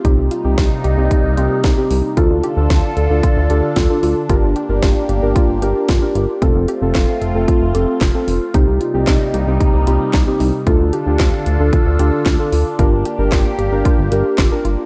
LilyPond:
<<
  \new Staff \with { instrumentName = "Synth keys" } { \time 4/4 \key d \phrygian \tempo 4 = 113 <c' ees' g'>8 r16 <c' ees' g'>8. r16 <c' ees' g'>8 r16 <c' ees' g'>8 r16 <c' ees' g'>8 r16 | <d' f' a'>8 r16 <d' f' a'>8. r16 <d' f' a'>8 r16 <d' f' a'>8 r16 <d' f' a'>8 r16 | <d' g' bes'>8 r16 <d' g' bes'>8. r16 <d' g' bes'>8 r16 <d' g' bes'>8 r16 <d' g' bes'>8 r16 | <c' f' a'>8 r16 <c' f' a'>8. r16 <c' f' a'>8 r16 <c' f' a'>8 r16 <c' f' a'>8 r16 |
<c' ees' g'>8 r16 <c' ees' g'>8. r16 <c' ees' g'>8 r16 <c' ees' g'>8 r16 <c' ees' g'>8 r16 | <d' f' a'>8 r16 <d' f' g'>8. r16 <d' f' a'>8 r16 <d' f' a'>8 r16 <d' f' a'>8 r16 | <d' g' bes'>8 r16 <d' g' bes'>8. r16 <d' g' bes'>8 r16 <d' g' bes'>8 r16 <d' g' bes'>8 r16 | }
  \new Staff \with { instrumentName = "Synth pluck" } { \time 4/4 \key d \phrygian ees'8 f'8 ees'8 g'8 ees'8 f'8 ees'8 ees'8 | f'8 g'8 f'8 a'8 f'8 g'8 f'8 f'8 | f'8 g'8 f'8 g'8 f'8 g'8 f'8 f'8 | f'8 g'8 f'8 a'8 f'8 g'8 f'8 f'8 |
ees'8 f'8 ees'8 g'8 ees'8 f'8 ees'8 ees'8 | f'8 g'8 f'8 a'8 f'8 g'8 f'8 f'8 | f'8 g'8 f'8 g'8 f'8 g'8 f'8 f'8 | }
  \new Staff \with { instrumentName = "Analog synth pad" } { \time 4/4 \key d \phrygian <c g bes ees'>1 | <d d' f' a'>1 | <bes g'>1 | <a c' f'>1 |
<c g bes ees'>1 | <d d' f' a'>1 | <bes g'>1 | }
  \new Staff \with { instrumentName = "Analog synth bass" } { \clef bass \time 4/4 \key d \phrygian c,16 c,16 r16 c,16 c,16 r16 c,16 c,16 r16 c,16 c,16 r16 c,16 r16 c,16 r16 | d,16 d,16 r16 d,16 d,16 r16 d,16 d,16 r16 d,16 d,16 r16 d,16 r16 d,16 r16 | g,,16 g,,16 r16 g,,16 g,,16 r16 g,,16 g,,16 r16 g,,16 g,,16 r16 g,,16 r16 g,,16 r16 | f,,16 f,,16 r16 f,,16 f,,16 r16 f,,16 f,,16 r16 f,,16 f,,16 r16 f,,16 r16 f,,16 r16 |
c,16 c,16 r16 c,16 c,16 r16 c,16 c,16 r16 c,16 c,16 r16 c,16 r16 c,16 r16 | d,16 d,16 r16 d,16 d,16 r16 d,16 d,16 r16 d,16 d,16 r16 d,16 r16 d,16 r16 | g,,16 g,,16 r16 g,,16 g,,16 r16 g,,16 g,,16 r16 g,,16 g,,16 r16 g,,16 r16 g,,16 r16 | }
  \new DrumStaff \with { instrumentName = "Drums" } \drummode { \time 4/4 <hh bd>8 hh8 <hh bd sn>8 hh8 <hh bd>8 hh8 <hh bd sn>8 hho8 | <hh bd>8 hh8 <hh bd sn>8 hh8 <hh bd>8 hh8 <hh bd sn>8 hho8 | <hh bd>8 hh8 <hh bd sn>8 hh8 <hh bd>8 hh8 <hh bd sn>8 hh8 | <hh bd>8 hh8 <hc hh bd sn>8 hh8 <hh bd>8 hh8 <hc hh bd sn>8 hho8 |
<hh bd>8 hh8 <hc hh bd sn>8 hh8 <hh bd>8 hh8 <hc hh bd sn>8 hho8 | <hh bd>8 hh8 <hc hh bd sn>8 hh8 <hh bd>8 hh8 <hc hh bd sn>8 hho8 | <hh bd>8 hh8 <hc hh bd sn>8 hh8 <hh bd>8 hh8 <hc hh bd sn>8 hh8 | }
>>